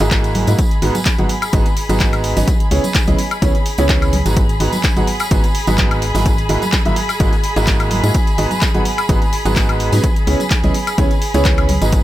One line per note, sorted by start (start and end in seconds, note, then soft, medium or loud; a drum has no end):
0.00 0.45 G#1 medium
0.00 0.45 G#2 loud
0.00 0.45 A#3 medium
0.00 0.45 E4 medium
0.00 0.45 F#4 medium
0.00 0.58 G#4 medium
0.00 0.45 G#4 medium
0.00 0.45 D#5 loud
0.00 0.58 B5 medium
0.00 closed hi-hat soft
0.11 kick loud
0.11 clap loud
0.11 closed hi-hat medium
0.24 closed hi-hat soft
0.24 tambourine soft
0.35 open hi-hat loud
0.35 high conga medium
0.47 0.55 G#2 loud
0.47 0.57 A#3 medium
0.47 0.57 E4 medium
0.47 0.57 F#4 medium
0.47 0.57 G#4 medium
0.47 0.57 D#5 medium
0.47 closed hi-hat soft
0.47 tambourine medium
0.59 12.03 G#4 medium
0.59 12.03 B5 medium
0.59 kick loud
0.59 closed hi-hat loud
0.59 tambourine medium
0.71 closed hi-hat soft
0.71 tambourine soft
0.82 0.91 G#1 loud
0.82 0.93 G#2 medium
0.82 0.93 B3 medium
0.82 0.93 D#4 medium
0.82 0.93 F#4 medium
0.82 0.93 G#4 medium
0.82 0.93 D#5 medium
0.82 open hi-hat loud
0.95 closed hi-hat soft
0.95 tambourine medium
0.95 high conga medium
1.05 kick loud
1.05 clap loud
1.05 closed hi-hat medium
1.18 1.26 G#1 loud
1.18 1.28 G#2 medium
1.18 1.28 B3 medium
1.18 1.28 D#4 medium
1.18 1.28 F#4 medium
1.18 1.28 G#4 medium
1.18 1.28 F#5 medium
1.18 closed hi-hat soft
1.18 tambourine soft
1.18 high conga medium
1.29 open hi-hat loud
1.42 closed hi-hat soft
1.42 tambourine medium
1.42 high woodblock medium
1.53 1.61 G#1 medium
1.53 1.64 G#2 medium
1.53 1.64 B3 medium
1.53 1.64 D#4 medium
1.53 1.64 F#4 medium
1.53 1.64 G#4 medium
1.53 1.64 D#5 loud
1.53 kick loud
1.53 closed hi-hat loud
1.53 tambourine medium
1.66 closed hi-hat soft
1.66 tambourine soft
1.77 open hi-hat loud
1.89 2.34 G#1 medium
1.89 2.34 G#2 medium
1.89 2.34 B3 medium
1.89 2.34 D#4 medium
1.89 2.34 F#4 medium
1.89 2.34 G#4 medium
1.89 2.34 D#5 loud
1.89 closed hi-hat soft
1.89 tambourine medium
1.89 high conga medium
2.00 kick loud
2.00 clap loud
2.00 closed hi-hat medium
2.13 closed hi-hat soft
2.13 tambourine soft
2.13 high woodblock medium
2.24 open hi-hat loud
2.36 2.44 G#1 medium
2.36 2.46 C#3 medium
2.36 2.46 B3 medium
2.36 2.46 D#4 medium
2.36 2.46 F#4 medium
2.36 2.46 G#4 medium
2.36 2.46 D#5 medium
2.36 open hi-hat medium
2.36 tambourine medium
2.36 high conga medium
2.48 kick loud
2.48 closed hi-hat medium
2.48 tambourine medium
2.60 closed hi-hat soft
2.60 tambourine soft
2.71 2.80 C#2 loud
2.71 2.82 C#3 medium
2.71 2.82 B3 medium
2.71 2.82 C#4 medium
2.71 2.82 E4 medium
2.71 2.82 G#4 medium
2.71 2.82 C#5 loud
2.71 open hi-hat loud
2.84 closed hi-hat soft
2.84 tambourine medium
2.84 high conga medium
2.95 kick loud
2.95 clap loud
2.95 closed hi-hat loud
2.95 tambourine medium
3.07 3.15 C#2 loud
3.07 3.17 C#3 medium
3.07 3.17 B3 medium
3.07 3.17 C#4 medium
3.07 3.17 E4 medium
3.07 3.17 G#4 medium
3.07 3.17 D#5 medium
3.07 closed hi-hat soft
3.07 tambourine soft
3.07 high conga loud
3.19 open hi-hat loud
3.31 closed hi-hat soft
3.31 tambourine medium
3.31 high woodblock medium
3.42 3.50 C#2 medium
3.42 3.53 C#3 medium
3.42 3.53 B3 medium
3.42 3.53 C#4 medium
3.42 3.53 E4 medium
3.42 3.53 G#4 medium
3.42 3.53 C#5 loud
3.42 kick loud
3.42 closed hi-hat medium
3.42 tambourine medium
3.55 closed hi-hat soft
3.55 tambourine soft
3.66 open hi-hat loud
3.78 4.23 C#2 medium
3.78 4.12 C#3 loud
3.78 4.12 B3 medium
3.78 4.12 C#4 medium
3.78 4.12 E4 medium
3.78 4.12 G#4 medium
3.78 4.12 C#5 loud
3.78 closed hi-hat soft
3.78 tambourine medium
3.89 kick loud
3.89 clap loud
3.89 closed hi-hat medium
3.89 tambourine medium
4.02 closed hi-hat soft
4.02 tambourine soft
4.02 high woodblock medium
4.13 open hi-hat loud
4.13 high conga medium
4.26 4.58 G#1 loud
4.26 4.41 G#2 medium
4.26 4.41 B3 medium
4.26 4.41 D#4 medium
4.26 4.41 F#4 medium
4.26 4.41 G#4 medium
4.26 4.41 D#5 medium
4.26 closed hi-hat soft
4.26 tambourine medium
4.36 kick loud
4.36 closed hi-hat medium
4.36 tambourine medium
4.49 closed hi-hat soft
4.49 tambourine soft
4.60 4.68 G#1 loud
4.60 4.71 G#2 medium
4.60 4.71 B3 medium
4.60 4.71 D#4 medium
4.60 4.71 F#4 medium
4.60 4.71 G#4 medium
4.60 4.71 D#5 medium
4.60 open hi-hat loud
4.72 closed hi-hat soft
4.72 tambourine medium
4.72 high conga medium
4.84 kick loud
4.84 clap loud
4.84 closed hi-hat medium
4.84 tambourine medium
4.97 5.04 G#1 loud
4.97 5.06 G#2 medium
4.97 5.06 B3 medium
4.97 5.06 D#4 medium
4.97 5.06 F#4 medium
4.97 5.06 G#4 medium
4.97 5.06 F#5 medium
4.97 closed hi-hat soft
4.97 tambourine soft
4.97 high conga loud
5.07 open hi-hat loud
5.19 closed hi-hat soft
5.19 tambourine medium
5.19 high woodblock medium
5.31 5.39 G#1 medium
5.31 5.42 G#2 medium
5.31 5.42 B3 medium
5.31 5.42 D#4 medium
5.31 5.42 F#4 medium
5.31 5.42 G#4 medium
5.31 5.42 D#5 medium
5.31 kick loud
5.31 closed hi-hat medium
5.31 tambourine medium
5.44 closed hi-hat soft
5.44 tambourine soft
5.55 open hi-hat loud
5.67 6.12 G#1 medium
5.67 6.01 G#2 loud
5.67 6.01 B3 medium
5.67 6.01 D#4 medium
5.67 6.01 F#4 medium
5.67 6.01 G#4 medium
5.67 6.01 D#5 loud
5.67 closed hi-hat soft
5.67 tambourine medium
5.67 high conga medium
5.78 kick loud
5.78 clap loud
5.78 closed hi-hat medium
5.91 closed hi-hat soft
5.91 tambourine soft
5.91 high woodblock medium
6.02 open hi-hat loud
6.15 6.47 G#1 loud
6.15 6.30 G#2 medium
6.15 6.30 A#3 medium
6.15 6.30 E4 medium
6.15 6.30 F#4 medium
6.15 6.30 G#4 medium
6.15 6.30 D#5 medium
6.15 open hi-hat medium
6.15 tambourine medium
6.15 high conga medium
6.26 kick loud
6.26 closed hi-hat medium
6.26 tambourine medium
6.38 closed hi-hat soft
6.38 tambourine soft
6.49 6.58 G#1 loud
6.49 6.60 G#2 medium
6.49 6.60 A#3 medium
6.49 6.60 E4 medium
6.49 6.60 F#4 medium
6.49 6.60 G#4 medium
6.49 6.60 D#5 medium
6.49 open hi-hat loud
6.62 closed hi-hat soft
6.62 tambourine medium
6.62 high conga medium
6.72 kick loud
6.72 clap loud
6.72 closed hi-hat medium
6.72 tambourine medium
6.85 6.93 G#1 loud
6.85 6.95 G#2 medium
6.85 6.95 A#3 medium
6.85 6.95 E4 medium
6.85 6.95 F#4 medium
6.85 6.95 G#4 medium
6.85 6.95 E5 medium
6.85 closed hi-hat soft
6.85 tambourine soft
6.85 high conga medium
6.96 open hi-hat loud
7.09 closed hi-hat soft
7.09 tambourine medium
7.09 high woodblock medium
7.20 7.28 G#1 medium
7.20 7.31 G#2 medium
7.20 7.31 A#3 medium
7.20 7.31 E4 medium
7.20 7.31 F#4 medium
7.20 7.31 G#4 medium
7.20 7.31 D#5 medium
7.20 kick loud
7.20 closed hi-hat medium
7.20 tambourine medium
7.33 closed hi-hat soft
7.33 tambourine soft
7.44 open hi-hat loud
7.56 8.01 G#1 loud
7.56 8.01 G#2 loud
7.56 8.01 A#3 medium
7.56 8.01 E4 medium
7.56 8.01 F#4 medium
7.56 8.01 G#4 medium
7.56 8.01 D#5 loud
7.56 closed hi-hat soft
7.56 tambourine medium
7.67 kick loud
7.67 clap loud
7.67 closed hi-hat medium
7.67 tambourine medium
7.80 closed hi-hat soft
7.80 tambourine soft
7.80 high woodblock medium
7.91 open hi-hat loud
7.91 high conga loud
8.04 8.11 G#2 medium
8.04 8.13 A#3 medium
8.04 8.13 E4 medium
8.04 8.13 F#4 medium
8.04 8.13 G#4 medium
8.04 8.13 D#5 medium
8.04 closed hi-hat soft
8.04 tambourine medium
8.14 kick loud
8.14 closed hi-hat medium
8.14 tambourine medium
8.27 closed hi-hat soft
8.27 tambourine soft
8.38 8.47 G#1 loud
8.38 8.49 G#2 medium
8.38 8.49 B3 medium
8.38 8.49 D#4 medium
8.38 8.49 F#4 medium
8.38 8.49 G#4 medium
8.38 8.49 D#5 medium
8.38 open hi-hat loud
8.50 closed hi-hat soft
8.50 tambourine medium
8.50 high conga medium
8.61 kick loud
8.61 clap loud
8.61 closed hi-hat medium
8.61 tambourine medium
8.74 8.82 G#1 loud
8.74 8.84 G#2 medium
8.74 8.84 B3 medium
8.74 8.84 D#4 medium
8.74 8.84 F#4 medium
8.74 8.84 G#4 medium
8.74 8.84 F#5 medium
8.74 closed hi-hat soft
8.74 tambourine soft
8.74 high conga medium
8.85 open hi-hat loud
8.98 closed hi-hat soft
8.98 tambourine medium
8.98 high woodblock medium
9.09 9.17 G#1 medium
9.09 9.20 G#2 medium
9.09 9.20 B3 medium
9.09 9.20 D#4 medium
9.09 9.20 F#4 medium
9.09 9.20 G#4 medium
9.09 9.20 D#5 loud
9.09 kick loud
9.09 closed hi-hat medium
9.09 tambourine medium
9.22 closed hi-hat soft
9.22 tambourine soft
9.33 open hi-hat loud
9.45 9.90 G#1 medium
9.45 9.90 G#2 loud
9.45 9.90 B3 medium
9.45 9.90 D#4 medium
9.45 9.90 F#4 medium
9.45 9.90 G#4 medium
9.45 9.90 D#5 loud
9.45 closed hi-hat soft
9.45 tambourine medium
9.45 high conga medium
9.56 kick loud
9.56 clap loud
9.56 closed hi-hat medium
9.56 tambourine medium
9.69 closed hi-hat soft
9.69 tambourine soft
9.69 high woodblock medium
9.80 open hi-hat loud
9.92 10.00 G#2 medium
9.92 10.02 C#3 medium
9.92 10.02 B3 medium
9.92 10.02 D#4 medium
9.92 10.02 F#4 medium
9.92 10.02 G#4 medium
9.92 10.02 D#5 medium
9.92 open hi-hat medium
9.92 tambourine medium
9.92 high conga medium
10.03 kick loud
10.03 closed hi-hat medium
10.03 tambourine medium
10.16 closed hi-hat soft
10.16 tambourine soft
10.27 10.35 C#2 loud
10.27 10.38 C#3 medium
10.27 10.38 B3 medium
10.27 10.38 C#4 medium
10.27 10.38 E4 medium
10.27 10.38 G#4 medium
10.27 10.38 C#5 medium
10.27 open hi-hat loud
10.40 closed hi-hat soft
10.40 tambourine medium
10.40 high conga medium
10.51 kick loud
10.51 clap loud
10.51 closed hi-hat medium
10.51 tambourine medium
10.64 10.71 C#2 loud
10.64 10.73 C#3 medium
10.64 10.73 B3 medium
10.64 10.73 C#4 medium
10.64 10.73 E4 medium
10.64 10.73 G#4 medium
10.64 10.73 D#5 medium
10.64 closed hi-hat soft
10.64 tambourine soft
10.64 high conga medium
10.74 open hi-hat loud
10.87 closed hi-hat soft
10.87 tambourine medium
10.87 high woodblock medium
10.98 11.06 C#2 medium
10.98 11.09 C#3 medium
10.98 11.09 B3 medium
10.98 11.09 C#4 medium
10.98 11.09 E4 medium
10.98 11.09 G#4 medium
10.98 11.09 C#5 loud
10.98 kick loud
10.98 closed hi-hat medium
10.98 tambourine medium
11.11 closed hi-hat soft
11.11 tambourine soft
11.22 open hi-hat loud
11.34 11.79 C#2 medium
11.34 11.68 C#3 loud
11.34 11.68 B3 medium
11.34 11.68 C#4 medium
11.34 11.68 E4 medium
11.34 11.68 G#4 medium
11.34 11.68 C#5 loud
11.34 closed hi-hat soft
11.34 tambourine medium
11.44 kick loud
11.44 clap loud
11.44 closed hi-hat medium
11.44 tambourine medium
11.58 closed hi-hat soft
11.58 tambourine soft
11.58 high woodblock medium
11.69 open hi-hat loud
11.69 high conga medium
11.82 12.03 G#1 medium
11.82 11.97 G#2 medium
11.82 11.97 B3 medium
11.82 11.97 D#4 medium
11.82 11.97 F#4 medium
11.82 11.97 G#4 medium
11.82 11.97 D#5 medium
11.82 closed hi-hat soft
11.82 tambourine medium
11.92 kick loud
11.92 closed hi-hat loud
11.92 tambourine medium